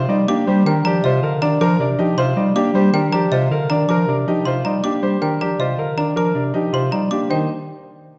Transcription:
Already playing: F4 C5 C6
0.08 G3 D#4 D5
0.28 A#3 D4 G4 D6
0.47 G3 G4 C5
0.66 D#3 D4 A#4 G5
0.84 F3 G4 D5 A#5
1.03 C3 F4 C5 D#5
1.22 D3 A#4 F5
1.42 D#3 D4 D5 A#5
1.61 F3 A#4 D6
1.79 C3 D4 D5
1.98 F3 D#4 G4
2.17 C3 F4 C5 C6
2.36 G3 D#4 D5
2.55 A#3 D4 G4 D6
2.74 G3 G4 C5
2.92 D#3 D4 A#4 G5
3.12 F3 G4 D5 A#5
3.31 C3 F4 C5 D#5
3.51 D3 A#4 F5
3.70 D#3 D4 D5 A#5
3.88 F3 A#4 D6
4.08 C3 D4 D5
4.27 F3 D#4 G4
4.45 C3 F4 C5 C6
4.65 G3 D#4 D5 A#5
4.83 A#3 D4 G4 D6
5.02 G3 G4 C5
5.22 D#3 D4 A#4 G5
5.41 F3 G4 D5 A#5
5.59 C3 F4 C5 D#5
5.77 D3 A#4 F5
5.96 D#3 D4 D5 A#5
6.16 F3 A#4 D6
6.35 C3 D4 D5
6.54 F3 D#4 G4
6.73 C3 F4 C5 C6
6.91 G3 D#4 D5 A#5
7.11 A#3 D4 G4 D6
7.30 D#3 D#4 C5 G5

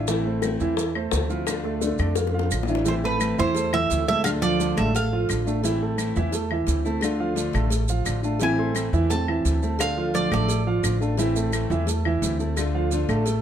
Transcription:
Already playing: A1
0.08 E3 A3 C4 E4 E5, high bongo, maracas
0.25 A3 A4 C5
0.42 E3 A3 C4 E4, high bongo, claves, maracas
0.60 E2 E3 E4 E5, maracas
0.77 muted steel-string acoustic guitar stroke, high bongo, maracas
0.95 A3 A4 C5, claves
1.11 D2 E3 A3 C4 E4 A4 C5, high bongo, low bongo, maracas
1.29 F3 A3 C4 E4 F4 F5, maracas
1.47 D3 A3 D4 F4, high bongo, claves, maracas
1.64 A3 A4 D5, high bongo
1.81 D3 A3 D4 F4, high bongo, maracas
1.98 F2 A3 A4 D5, high bongo, claves, maracas
2.16 F3 F4 F5, muted steel-string acoustic guitar stroke, high bongo, maracas
2.27 high bongo
2.34 F3 F4 F5
2.39 high bongo
2.50 A1 D3 A3 D4 F4, claves, maracas
2.63 low bongo
2.68 E3 A3 D4 E4 F4 E5, maracas
2.75 low bongo
2.84 E3 A3 C4 E4 C5 E5, cowbell, maracas
3.04 E3 A3 A4 B4 A5
3.20 E3 A3 C4 E4, cowbell, claves, maracas
3.38 E2 E3 E4 C5 E5, maracas
3.55 A3 A4 A5, muted steel-string acoustic guitar stroke, cowbell, maracas
3.73 E3 A3 E4 E5, claves
3.90 D2 E3 A3 C4 E4, cowbell, maracas
4.07 G#3 A3 C4 E4 A4 E5 A5, maracas
4.24 D3 A3 D4 F4 F5, cowbell, claves, maracas
4.42 F3 F4 D5 F5, maracas
4.59 D3 A3 D4 F4, cowbell, maracas
4.77 A1 G#3 A3 A4 E5 A5, cowbell, claves, maracas
4.94 A3 F5, muted steel-string acoustic guitar stroke, cowbell, maracas
5.12 F3 F4 F5
5.28 A1 D3 A3 D4 F4, cowbell, claves, maracas
5.45 A3 D4 F4 A4 A5, maracas
5.63 E3 A3 C4 E4 E5, cowbell, maracas
5.82 A3 A4 A5
5.97 E3 A3 C4 E4, cowbell, claves, maracas
6.16 E2 E3 E4 E5, maracas
6.32 A3 A4 A5, muted steel-string acoustic guitar stroke, cowbell, maracas
6.51 E3 E4 E5, claves
6.67 D2 E3 A3 C4 E4, cowbell, maracas
6.85 A3 C4 E4 A4 A5, maracas
7.01 D3 A3 D4 F4, cowbell, claves, maracas
7.20 F3 F4 F5
7.35 D3 A3 D4 F4, cowbell, maracas
7.53 A1 A3 A4 A5, cowbell, claves, maracas
7.70 muted steel-string acoustic guitar stroke, cowbell, maracas
7.88 F3 F4 F5, maracas
8.05 A1 D3 A3 D4 F4, cowbell, claves, maracas
8.23 A3 D4 F4 A4 A5, maracas
8.40 E3 A3 C4 E4 E5 G#5, cowbell, maracas
8.59 A3 A4 C6
8.74 E3 A3 C4 E4, cowbell, claves, maracas
8.93 E2 E3 E4 E5, maracas
9.09 A3 C4 A4 A5, muted steel-string acoustic guitar stroke, cowbell, maracas
9.28 E3 E4 E5, claves
9.44 D2 E3 A3 C4 E4, cowbell, maracas
9.62 A3 C4 E4 A4 A5, maracas
9.79 D3 A3 D4 F4 F5, cowbell, claves, maracas
9.97 F3 F4 F5
10.14 D3 F3 A3 D4 F4 D5, cowbell, maracas
10.32 A1 F3 A3 A4 D5 A5, cowbell, claves, maracas
10.49 muted steel-string acoustic guitar stroke, cowbell, maracas
10.67 F3 F4 F5
10.83 A1 D3 A3 D4 F4, cowbell, claves, maracas
11.01 A3 D4 F4 A4 A5, maracas
11.17 E3 A3 C4 E4 E5, cowbell, maracas
11.36 A3 A4 A5, maracas
11.52 E3 A3 C4 E4, cowbell, claves, maracas
11.70 E2 E3 E4 E5, maracas
11.86 A3 A4 A5, muted steel-string acoustic guitar stroke, cowbell, maracas
12.05 E3 E4 E5, claves
12.22 D2 E3 A3 C4 E4, cowbell, maracas
12.39 A3 C4 E4 A4 A5, maracas
12.57 D3 A3 D4 F4, cowbell, claves, maracas
12.74 F3 F4 F5
12.91 D3 A3 D4 F4, cowbell, maracas
13.09 A1 A3 A4 A5, cowbell, claves, maracas
13.26 muted steel-string acoustic guitar stroke, cowbell, maracas

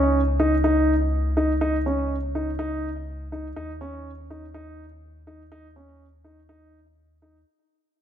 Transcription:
Already playing: C#2 C#4
0.40 D#4
0.64 D#4
1.37 D#4
1.61 D#4
1.86 C#4
2.35 D#4
2.59 D#4
3.32 D#4
3.56 D#2 D#4
3.81 C#4
4.30 D#4
4.54 D#4
5.27 D#4
5.52 D#4
5.76 C#4
6.24 D#4
6.49 D#4
7.22 D#4

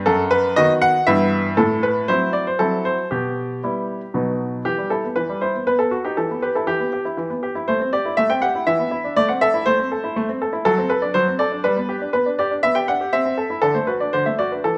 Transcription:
0.06 F#2 A4
0.31 B4
0.56 D#3 B3 F#4 D#5
0.82 F#5
1.07 G2 E3 B3 E4 E5
1.57 A2 A4
1.83 B4
2.08 F#3 C4 E4 C5
2.33 D5
2.47 C5
2.59 F#3 C4 E4 A4
2.85 C5
3.11 B2 G4
3.63 G3 B3 E4
4.14 B2 F#3 B3 D#4
4.65 E3 G4
4.78 G3
4.90 E4 A4
5.04 B3
5.16 E3 B4
5.29 G3
5.41 E4 C5
5.54 B3
5.67 B3 B4
5.79 B3 A4
5.91 F#4
6.05 D#4 G4
6.17 E3 A4
6.31 B3
6.42 G4 B4
6.55 E4 A4
6.67 E3 G4
6.80 B3
6.93 G4
7.05 E4
7.17 E3
7.30 B3
7.43 G4
7.55 E4
7.68 A3 C5
7.81 C4
7.93 G4 D5
8.05 E4
8.17 A3 E5
8.30 C4 G5
8.42 G4 F#5
8.55 E4
8.67 E3 E5
8.79 B3
8.91 E4
9.04 D4
9.16 A3 D5
9.29 C4 F#5
9.41 A4 E5
9.54 E4
9.66 A3 C5
9.79 C4
9.92 A4
10.04 E4
10.16 A3
10.29 C4
10.42 A4
10.53 E4
10.65 F#3 A4
10.78 C4
10.90 A4 B4
11.02 D4 D5
11.14 F#3 C5
11.28 C4
11.39 A4 D5
11.52 D4
11.64 G3 B4
11.77 B3
11.89 G4
12.01 D4
12.13 B3 B4
12.26 D4
12.39 G4 D5
12.51 D4
12.63 B3 E5
12.75 G4 G5
12.88 D4 F#5
13.01 G4
13.13 C4 E5
13.25 C4
13.38 A4
13.50 E4
13.62 D3 A4
13.74 A3 C5
13.87 F#4 B4
14.00 D4 D5
14.13 D3 C5
14.26 A3 E5
14.39 F#4 D5
14.52 D4 B4
14.64 E3 A4

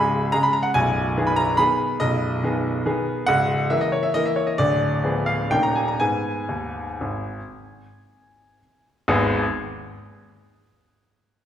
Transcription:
Already playing: C#1 C#2 C#3 G#3 G#4 G#5 B5
0.32 C#3 G#3 G#4 A#5
0.43 B5
0.53 A#5
0.63 F#5
0.74 B0 B1 G#5
1.17 D#3 B3 G#4
1.27 B5
1.36 A#5
1.57 D#3 B3 G#4 B5
2.00 B0 B1 D#5
2.43 D#3 B3 G#4
2.86 D#3 B3 G#4
3.26 C#1 C#2 F#5
3.70 E3 A#3 A#4 E5
3.81 D#5
3.92 C#5
4.03 E5
4.14 E3 A#3 A#4 D#5
4.25 E5
4.36 C#5
4.47 D#5
4.58 D1 D2 D5
5.04 F3 B3 G#4
5.26 F5
5.51 D#1 D#2 D#3 C#4 A#4 G5
5.63 A#5
5.76 G#5
5.88 A#5
6.00 G#2 B3 G#4 G#5
6.49 D#2
7.01 G#1
9.08 G#1 D#2 G#3 B3 D#4 G#4

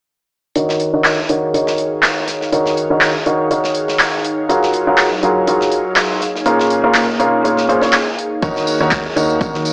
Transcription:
0.56 D#3 D#4 F#4 A#4 C#5, closed hi-hat
0.69 snare
0.76 C#5, closed hi-hat
0.84 G#4
0.94 D#3 D#4 F#4 A#4 C#5
0.98 F5
1.04 snare, clap, closed hi-hat
1.29 D#3 D#4 F#4 A#4 C#5, closed hi-hat
1.54 D#3 D#4 F#4 A#4 C#5, closed hi-hat
1.67 snare
1.78 closed hi-hat
2.03 snare, clap, closed hi-hat
2.28 snare, closed hi-hat
2.41 snare
2.52 D#3 D#4 F#4 A#4 C#5, closed hi-hat
2.66 snare
2.77 closed hi-hat
2.90 D#3 D#4 F#4 A#4 C#5
3.01 snare, clap, closed hi-hat
3.26 D#3 D#4 F#4 A#4 C#5, closed hi-hat
3.51 D#3 D#4 F#4 A#4 C#5, closed hi-hat
3.64 snare
3.75 closed hi-hat
3.88 snare
3.99 snare, clap, closed hi-hat
4.24 closed hi-hat
4.49 F#3 F4 F#4 G#4 A#4, closed hi-hat
4.63 snare
4.74 closed hi-hat
4.87 F#3 F4 F#4 G#4 A#4
4.98 snare, clap, closed hi-hat
5.23 F#3 F4 F#4 G#4 A#4, closed hi-hat
5.47 F#3 F4 F#4 G#4 A#4, closed hi-hat
5.61 snare
5.72 closed hi-hat
5.96 snare, clap, closed hi-hat
6.21 A#3, snare, closed hi-hat
6.35 snare
6.46 A#2 C#4 F4 G#4 A#4, closed hi-hat
6.60 snare
6.70 closed hi-hat
6.84 A#2 C#4 F4 G#4 A#4
6.94 snare, clap, closed hi-hat
7.20 A#2 C#4 F4 G#4 A#4, closed hi-hat
7.44 A#2 C#4 F4 G#4 A#4, closed hi-hat
7.57 snare
7.69 A#2 C#4 F4 G#4 C5, closed hi-hat
7.82 A#2 C#4 F4 G#4 C#5, snare
7.93 snare, clap, closed hi-hat
8.19 closed hi-hat
8.42 D#2 D#3 D#4 F#4 A#4 C#5, kick, closed hi-hat, tambourine
8.56 snare, tambourine
8.67 closed hi-hat, tambourine
8.80 D#2 D#3 D#4 F#4 A#4 C#5, tambourine
8.91 kick, snare, clap, closed hi-hat, tambourine
9.16 D#2 D#3 D#4 F#4 A#4 C#5, closed hi-hat, tambourine
9.30 tambourine
9.41 D#3 D#4 F#4 A#4 C#5, kick, closed hi-hat, tambourine
9.54 D#2, snare
9.65 closed hi-hat, tambourine

